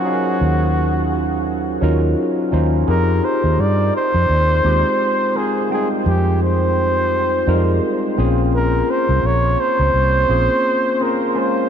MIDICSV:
0, 0, Header, 1, 4, 480
1, 0, Start_track
1, 0, Tempo, 705882
1, 33, Time_signature, 4, 2, 24, 8
1, 7950, End_track
2, 0, Start_track
2, 0, Title_t, "Flugelhorn"
2, 0, Program_c, 0, 56
2, 0, Note_on_c, 0, 66, 83
2, 1236, Note_off_c, 0, 66, 0
2, 1967, Note_on_c, 0, 70, 92
2, 2209, Note_on_c, 0, 72, 83
2, 2219, Note_off_c, 0, 70, 0
2, 2451, Note_on_c, 0, 74, 95
2, 2461, Note_off_c, 0, 72, 0
2, 2682, Note_off_c, 0, 74, 0
2, 2694, Note_on_c, 0, 72, 111
2, 3653, Note_on_c, 0, 68, 80
2, 3663, Note_off_c, 0, 72, 0
2, 3883, Note_off_c, 0, 68, 0
2, 3898, Note_on_c, 0, 68, 73
2, 4000, Note_off_c, 0, 68, 0
2, 4134, Note_on_c, 0, 67, 74
2, 4347, Note_off_c, 0, 67, 0
2, 4377, Note_on_c, 0, 72, 92
2, 5538, Note_off_c, 0, 72, 0
2, 5810, Note_on_c, 0, 70, 91
2, 6055, Note_on_c, 0, 72, 92
2, 6065, Note_off_c, 0, 70, 0
2, 6297, Note_on_c, 0, 73, 96
2, 6307, Note_off_c, 0, 72, 0
2, 6530, Note_on_c, 0, 72, 106
2, 6540, Note_off_c, 0, 73, 0
2, 7499, Note_on_c, 0, 70, 76
2, 7509, Note_off_c, 0, 72, 0
2, 7742, Note_on_c, 0, 72, 87
2, 7752, Note_off_c, 0, 70, 0
2, 7950, Note_off_c, 0, 72, 0
2, 7950, End_track
3, 0, Start_track
3, 0, Title_t, "Tine electric piano"
3, 0, Program_c, 1, 4
3, 0, Control_c, 1, 64, 127
3, 0, Note_on_c, 1, 54, 53
3, 0, Note_on_c, 1, 61, 51
3, 0, Note_on_c, 1, 63, 48
3, 0, Note_on_c, 1, 65, 52
3, 0, Note_on_c, 1, 72, 63
3, 32, Note_off_c, 1, 54, 0
3, 32, Note_on_c, 1, 54, 65
3, 36, Note_off_c, 1, 61, 0
3, 36, Note_on_c, 1, 61, 62
3, 39, Note_off_c, 1, 63, 0
3, 39, Note_on_c, 1, 63, 53
3, 45, Note_on_c, 1, 77, 56
3, 47, Note_on_c, 1, 68, 54
3, 91, Note_off_c, 1, 68, 0
3, 91, Note_on_c, 1, 70, 72
3, 753, Note_off_c, 1, 54, 0
3, 755, Note_off_c, 1, 61, 0
3, 756, Note_off_c, 1, 63, 0
3, 759, Note_off_c, 1, 77, 0
3, 782, Note_off_c, 1, 70, 0
3, 1233, Note_on_c, 1, 54, 78
3, 1235, Note_on_c, 1, 61, 68
3, 1241, Note_on_c, 1, 63, 73
3, 1244, Note_off_c, 1, 65, 0
3, 1244, Note_on_c, 1, 65, 76
3, 1248, Note_on_c, 1, 70, 81
3, 1611, Note_off_c, 1, 54, 0
3, 1612, Note_off_c, 1, 61, 0
3, 1615, Note_off_c, 1, 63, 0
3, 1617, Note_off_c, 1, 65, 0
3, 1619, Note_off_c, 1, 70, 0
3, 1710, Note_on_c, 1, 54, 64
3, 1715, Note_on_c, 1, 61, 66
3, 1718, Note_on_c, 1, 63, 65
3, 1722, Note_on_c, 1, 65, 61
3, 1725, Note_off_c, 1, 72, 0
3, 1725, Note_on_c, 1, 72, 81
3, 1901, Note_off_c, 1, 54, 0
3, 1903, Note_off_c, 1, 61, 0
3, 1905, Note_off_c, 1, 63, 0
3, 1907, Note_off_c, 1, 65, 0
3, 1908, Note_off_c, 1, 72, 0
3, 1956, Note_on_c, 1, 68, 70
3, 1958, Note_on_c, 1, 60, 55
3, 1962, Control_c, 1, 64, 0
3, 1962, Note_on_c, 1, 63, 61
3, 1965, Note_on_c, 1, 65, 57
3, 1970, Note_on_c, 1, 67, 69
3, 2087, Control_c, 1, 64, 127
3, 2675, Note_off_c, 1, 68, 0
3, 2676, Note_off_c, 1, 60, 0
3, 2678, Note_off_c, 1, 63, 0
3, 2679, Note_off_c, 1, 65, 0
3, 2682, Note_off_c, 1, 67, 0
3, 3155, Note_on_c, 1, 56, 70
3, 3158, Note_on_c, 1, 60, 59
3, 3163, Note_on_c, 1, 63, 59
3, 3165, Note_on_c, 1, 65, 58
3, 3169, Note_on_c, 1, 67, 69
3, 3532, Note_off_c, 1, 56, 0
3, 3534, Note_off_c, 1, 60, 0
3, 3536, Note_off_c, 1, 63, 0
3, 3537, Note_off_c, 1, 65, 0
3, 3539, Note_off_c, 1, 67, 0
3, 3637, Note_on_c, 1, 56, 53
3, 3641, Note_on_c, 1, 60, 46
3, 3645, Note_on_c, 1, 63, 46
3, 3650, Note_on_c, 1, 65, 52
3, 3651, Note_on_c, 1, 70, 61
3, 3824, Note_off_c, 1, 56, 0
3, 3826, Note_off_c, 1, 60, 0
3, 3828, Note_off_c, 1, 63, 0
3, 3831, Note_off_c, 1, 65, 0
3, 3831, Note_off_c, 1, 70, 0
3, 3875, Note_on_c, 1, 55, 49
3, 3879, Note_on_c, 1, 60, 61
3, 3883, Note_on_c, 1, 63, 56
3, 3885, Note_on_c, 1, 65, 55
3, 3889, Note_on_c, 1, 79, 67
3, 3919, Note_on_c, 1, 56, 62
3, 3925, Note_off_c, 1, 55, 0
3, 4596, Note_off_c, 1, 60, 0
3, 4598, Note_off_c, 1, 63, 0
3, 4599, Note_off_c, 1, 65, 0
3, 4601, Note_off_c, 1, 79, 0
3, 4616, Note_off_c, 1, 56, 0
3, 5077, Note_on_c, 1, 55, 59
3, 5080, Note_on_c, 1, 60, 71
3, 5084, Note_on_c, 1, 63, 65
3, 5087, Note_on_c, 1, 65, 70
3, 5091, Note_on_c, 1, 70, 86
3, 5120, Note_on_c, 1, 56, 80
3, 5126, Note_off_c, 1, 55, 0
3, 5455, Note_off_c, 1, 60, 0
3, 5457, Note_off_c, 1, 63, 0
3, 5458, Note_off_c, 1, 65, 0
3, 5460, Note_off_c, 1, 70, 0
3, 5475, Note_off_c, 1, 56, 0
3, 5557, Note_on_c, 1, 58, 75
3, 5559, Note_on_c, 1, 60, 65
3, 5562, Control_c, 1, 64, 0
3, 5565, Note_on_c, 1, 61, 71
3, 5568, Note_on_c, 1, 65, 70
3, 5570, Note_on_c, 1, 68, 85
3, 5665, Control_c, 1, 64, 127
3, 6330, Note_off_c, 1, 58, 0
3, 6331, Note_off_c, 1, 60, 0
3, 6334, Note_off_c, 1, 61, 0
3, 6336, Note_off_c, 1, 65, 0
3, 6337, Note_off_c, 1, 68, 0
3, 6994, Note_on_c, 1, 58, 62
3, 6997, Note_on_c, 1, 60, 55
3, 7002, Note_on_c, 1, 61, 59
3, 7004, Note_on_c, 1, 65, 62
3, 7009, Note_on_c, 1, 68, 67
3, 7372, Note_off_c, 1, 58, 0
3, 7373, Note_off_c, 1, 60, 0
3, 7376, Note_off_c, 1, 61, 0
3, 7377, Note_off_c, 1, 65, 0
3, 7379, Note_off_c, 1, 68, 0
3, 7474, Note_on_c, 1, 58, 58
3, 7477, Note_on_c, 1, 60, 55
3, 7480, Note_on_c, 1, 61, 50
3, 7484, Note_on_c, 1, 65, 55
3, 7489, Note_on_c, 1, 68, 65
3, 7663, Note_off_c, 1, 58, 0
3, 7664, Note_off_c, 1, 60, 0
3, 7666, Note_off_c, 1, 61, 0
3, 7668, Note_off_c, 1, 65, 0
3, 7670, Note_off_c, 1, 68, 0
3, 7715, Note_on_c, 1, 58, 65
3, 7718, Note_on_c, 1, 56, 54
3, 7721, Note_on_c, 1, 61, 62
3, 7723, Note_on_c, 1, 65, 62
3, 7729, Note_on_c, 1, 70, 70
3, 7950, Note_off_c, 1, 56, 0
3, 7950, Note_off_c, 1, 58, 0
3, 7950, Note_off_c, 1, 61, 0
3, 7950, Note_off_c, 1, 65, 0
3, 7950, Note_off_c, 1, 70, 0
3, 7950, End_track
4, 0, Start_track
4, 0, Title_t, "Fingered electric bass"
4, 0, Program_c, 2, 33
4, 281, Note_on_c, 2, 39, 78
4, 1210, Note_off_c, 2, 39, 0
4, 1240, Note_on_c, 2, 39, 81
4, 1452, Note_off_c, 2, 39, 0
4, 1720, Note_on_c, 2, 39, 81
4, 1932, Note_off_c, 2, 39, 0
4, 1959, Note_on_c, 2, 41, 91
4, 2172, Note_off_c, 2, 41, 0
4, 2338, Note_on_c, 2, 39, 80
4, 2426, Note_off_c, 2, 39, 0
4, 2440, Note_on_c, 2, 43, 80
4, 2652, Note_off_c, 2, 43, 0
4, 2818, Note_on_c, 2, 41, 80
4, 2906, Note_off_c, 2, 41, 0
4, 2920, Note_on_c, 2, 39, 76
4, 3132, Note_off_c, 2, 39, 0
4, 3159, Note_on_c, 2, 39, 71
4, 3281, Note_off_c, 2, 39, 0
4, 4122, Note_on_c, 2, 41, 82
4, 5050, Note_off_c, 2, 41, 0
4, 5083, Note_on_c, 2, 41, 73
4, 5294, Note_off_c, 2, 41, 0
4, 5564, Note_on_c, 2, 34, 91
4, 5990, Note_off_c, 2, 34, 0
4, 6181, Note_on_c, 2, 36, 76
4, 6268, Note_off_c, 2, 36, 0
4, 6279, Note_on_c, 2, 34, 72
4, 6492, Note_off_c, 2, 34, 0
4, 6660, Note_on_c, 2, 37, 76
4, 6747, Note_off_c, 2, 37, 0
4, 6759, Note_on_c, 2, 36, 69
4, 6972, Note_off_c, 2, 36, 0
4, 7000, Note_on_c, 2, 34, 84
4, 7121, Note_off_c, 2, 34, 0
4, 7950, End_track
0, 0, End_of_file